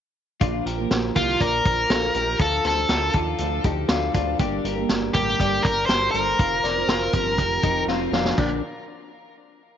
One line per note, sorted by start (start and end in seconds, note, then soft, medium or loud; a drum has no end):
0.40 0.61 A#1 medium
0.40 0.78 F3 medium
0.40 0.79 A#3 medium
0.40 0.66 D4 medium
0.40 0.66 F4 medium
0.40 0.78 F4 medium
0.40 0.77 A#4 medium
0.40 kick medium
0.40 closed hi-hat medium
0.66 0.86 A#1 medium
0.66 1.13 G4 medium
0.66 1.13 A#4 medium
0.66 closed hi-hat medium
0.78 1.15 F3 soft
0.78 1.15 A#3 soft
0.78 1.15 F4 soft
0.78 1.16 A#4 medium
0.91 1.11 A#1 medium
0.91 snare medium
0.91 closed hi-hat medium
1.15 1.36 C2 medium
1.15 1.40 A#2 medium
1.15 1.40 D3 medium
1.15 1.38 F3 medium
1.15 1.40 A#3 medium
1.15 1.42 F4 medium
1.15 1.40 F4 medium
1.15 1.41 G4 medium
1.15 1.40 A#4 medium
1.15 1.41 A#4 medium
1.15 kick medium
1.15 closed hi-hat medium
1.39 1.61 A#1 medium
1.39 1.63 F3 medium
1.39 1.65 A#3 soft
1.39 1.88 A#4 medium
1.39 1.87 D5 medium
1.39 kick medium
1.39 closed hi-hat medium
1.64 1.86 A#1 medium
1.64 2.14 F3 soft
1.64 2.16 F4 medium
1.64 kick medium
1.64 closed hi-hat medium
1.90 2.10 A#1 medium
1.90 2.15 F4 medium
1.90 2.14 A4 medium
1.90 snare loud
1.90 closed hi-hat medium
2.14 2.35 A#1 loud
2.14 2.38 F3 medium
2.14 2.40 A#3 medium
2.14 2.40 F4 medium
2.14 2.40 G4 soft
2.14 2.39 A#4 medium
2.14 2.41 A#4 medium
2.14 closed hi-hat medium
2.39 2.60 D2 loud
2.39 2.77 F3 medium
2.39 2.78 D4 medium
2.39 2.65 F4 medium
2.39 2.76 F4 medium
2.39 2.64 A4 medium
2.39 2.75 A4 medium
2.39 kick loud
2.39 closed hi-hat medium
2.65 2.85 D2 medium
2.65 2.90 A4 medium
2.65 2.89 C5 medium
2.65 snare soft
2.65 closed hi-hat medium
2.76 3.14 D4 soft
2.76 3.14 F4 soft
2.76 3.14 A4 soft
2.89 3.10 D2 loud
2.89 3.14 F4 medium
2.89 3.14 A#4 medium
2.89 snare medium
2.89 closed hi-hat medium
3.13 3.35 D#2 medium
3.13 3.39 D3 medium
3.13 3.38 F3 medium
3.13 3.39 D4 medium
3.13 3.40 F4 medium
3.13 3.62 F4 medium
3.13 3.62 A4 medium
3.13 3.41 A4 medium
3.13 kick medium
3.13 closed hi-hat medium
3.38 3.60 D2 loud
3.38 3.63 F3 medium
3.38 3.64 D4 medium
3.38 3.65 F4 medium
3.38 closed hi-hat medium
3.42 3.66 A4 medium
3.64 3.85 D2 loud
3.64 4.12 F3 medium
3.64 4.14 D4 medium
3.64 3.90 D#4 medium
3.64 4.15 F4 medium
3.64 3.89 G4 medium
3.64 4.15 A4 medium
3.64 kick medium
3.64 closed hi-hat medium
3.88 4.10 D2 medium
3.88 4.15 D4 medium
3.88 4.13 F4 medium
3.88 snare loud
3.88 closed hi-hat medium
4.13 4.35 D2 loud
4.13 4.38 F3 medium
4.13 4.39 D4 medium
4.13 4.40 D4 medium
4.13 4.40 F4 medium
4.13 4.41 A4 medium
4.13 kick medium
4.13 closed hi-hat medium
4.38 4.60 G1 loud
4.38 4.76 G3 medium
4.38 4.77 A#3 medium
4.38 4.76 D4 medium
4.38 4.65 D4 medium
4.38 4.65 G4 medium
4.38 4.74 A#4 medium
4.38 kick medium
4.38 closed hi-hat medium
4.65 4.85 G1 medium
4.65 5.12 G4 medium
4.65 5.12 A#4 medium
4.65 closed hi-hat medium
4.76 5.14 A#3 medium
4.76 5.15 D4 medium
4.76 5.14 A#4 medium
4.80 5.14 G3 soft
4.89 5.10 G1 medium
4.89 snare loud
4.89 closed hi-hat medium
5.14 5.35 A1 medium
5.14 5.39 G2 medium
5.14 5.39 D3 medium
5.14 5.37 G3 medium
5.14 5.39 A#3 medium
5.14 5.40 D4 medium
5.14 5.40 G4 medium
5.14 5.40 A#4 medium
5.14 kick medium
5.14 closed hi-hat medium
5.38 5.60 G1 medium
5.38 5.63 G3 medium
5.38 5.64 A#3 medium
5.38 5.65 D4 medium
5.38 5.87 A#4 medium
5.38 5.87 D5 medium
5.38 kick medium
5.38 closed hi-hat medium
5.42 5.66 A#4 medium
5.63 5.85 G1 medium
5.63 6.12 G3 medium
5.63 6.14 A#3 medium
5.63 6.15 D4 medium
5.63 5.86 A#4 medium
5.63 kick medium
5.63 closed hi-hat medium
5.68 6.17 A#4 medium
5.86 6.09 G1 medium
5.86 6.11 C5 loud
5.86 snare loud
5.86 closed hi-hat medium
5.90 6.15 G4 medium
5.90 6.15 A#4 medium
6.11 6.34 G1 medium
6.11 6.38 G3 medium
6.11 6.39 A#3 medium
6.11 6.39 A4 soft
6.11 7.83 A#4 medium
6.11 6.39 C5 medium
6.11 closed hi-hat medium
6.16 6.40 D4 medium
6.16 6.40 A#4 medium
6.38 6.60 F1 loud
6.38 6.76 F3 soft
6.38 6.77 C4 medium
6.38 6.64 F4 medium
6.38 6.76 F4 medium
6.38 6.63 A#4 medium
6.38 kick loud
6.38 closed hi-hat medium
6.63 6.84 F1 medium
6.63 6.89 A#4 medium
6.63 6.89 D5 medium
6.63 snare soft
6.63 closed hi-hat medium
6.76 7.13 C4 soft
6.76 7.14 F4 medium
6.76 7.14 A#4 medium
6.88 7.09 F1 medium
6.88 7.14 F4 medium
6.88 7.13 C5 medium
6.88 snare loud
6.88 closed hi-hat medium
7.13 7.40 G1 medium
7.13 7.38 F3 medium
7.13 7.39 C4 medium
7.13 7.40 F4 medium
7.13 7.61 G4 medium
7.13 7.61 A#4 medium
7.13 7.40 A#4 medium
7.13 kick medium
7.13 closed hi-hat medium
7.38 7.59 F1 loud
7.38 7.63 F3 medium
7.38 7.65 C4 medium
7.38 7.65 F4 medium
7.38 kick medium
7.38 closed hi-hat medium
7.42 7.65 A#4 medium
7.63 7.84 F1 medium
7.63 8.12 F3 medium
7.63 8.12 C4 medium
7.63 7.89 D#4 soft
7.63 8.14 F4 medium
7.63 7.88 G4 medium
7.63 kick medium
7.63 closed hi-hat medium
7.67 8.15 A#4 medium
7.87 8.08 F1 medium
7.87 8.14 C4 medium
7.87 8.12 F4 medium
7.87 snare soft
8.12 8.33 F1 medium
8.12 8.38 F3 medium
8.12 8.38 C4 medium
8.12 8.37 D4 medium
8.12 8.38 F4 medium
8.12 8.39 F4 medium
8.12 8.39 A#4 medium
8.12 snare medium
8.25 snare medium
8.38 8.61 A#1 medium
8.38 8.58 A#2 medium
8.38 8.58 D3 medium
8.38 8.59 F3 medium
8.38 8.59 A#3 medium
8.38 8.61 D4 medium
8.38 8.59 D4 medium
8.38 8.59 A#4 medium
8.38 kick medium
8.38 crash medium